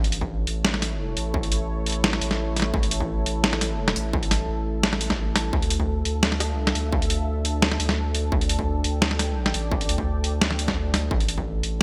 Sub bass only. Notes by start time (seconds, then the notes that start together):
Already playing: A1
0.47 A1
1.17 A1
2.21 A1
2.74 A1
3.26 A1
3.96 A1
4.48 A1
5.53 D2
6.05 D2
6.53 C#2
6.75 D2
7.80 D2
8.32 D2
8.84 D2
9.55 A1
9.89 D2
10.41 D2
11.11 A1
11.63 A1